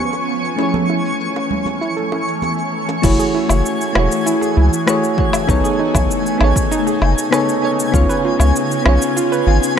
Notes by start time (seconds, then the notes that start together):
Already playing: F3 B3 C#4 F4 G#4 C#5 G#5 C#6
0.13 high bongo, shaker
0.45 shaker
0.56 E3 A3 C#4 E4, high bongo, shaker
0.61 G#4 C#5
0.74 A4, high conga, shaker
0.90 E4, high bongo
1.06 shaker
1.21 shaker
1.36 high bongo, shaker
1.51 low conga
1.66 high bongo, high conga, shaker
1.81 E4, shaker
1.97 A4, shaker
2.12 E4, high bongo
2.28 shaker
2.42 high bongo, high conga, shaker
2.58 shaker
2.89 high bongo, shaker
3.02 F#1 E3 A3 E4 F#4 G#4 C#5 G#5, kick, crash, shaker
3.19 G#4, shaker
3.35 E4
3.48 F#1 A3 E4 F#4 G#4 C#5, low woodblock, shaker
3.66 shaker
3.81 shaker
3.93 E1 A3 E4 F#4, cross-stick, low woodblock
3.98 G#4 C#5
4.12 shaker
4.26 E4, shaker
4.41 G#4, shaker
4.57 C#2 E4
4.73 shaker
4.87 A3 E4 F#4 G#4 C#5, cross-stick, shaker
5.04 shaker
5.17 A3 E4 F#4 G#4 C#5, kick
5.33 low woodblock, shaker
5.47 B1 C#3 B3 D#4 G#4 A4 C#5, kick, shaker
5.64 G#4, shaker
5.79 D#4
5.93 B1 B3 D#4 G#4 A4 C#5, kick, low woodblock, shaker
6.11 shaker
6.26 shaker
6.38 A1 B3 D#4 G#4, low woodblock
6.43 A4 C#5
6.56 kick, shaker
6.71 D#4, shaker
6.87 G#4, shaker
7.02 F#1 D#4, low woodblock
7.18 shaker
7.31 B3 D#4 G#4 A4 C#5, cross-stick, shaker
7.49 shaker
7.62 B3 D#4 G#4 A4 C#5
7.80 shaker
7.92 C#2 B3 C#4 F4 G#4 C#5, kick, shaker
8.09 B4, shaker
8.24 F4
8.38 C#2 B3 C#4 F4 G#4 C#5, low woodblock, shaker
8.56 shaker
8.71 shaker
8.82 B1 B3 C#4 F4, cross-stick, low woodblock
8.87 G#4 C#5
9.02 shaker
9.16 F4, shaker
9.32 B4, shaker
9.47 G#1 F4
9.63 shaker
9.76 B3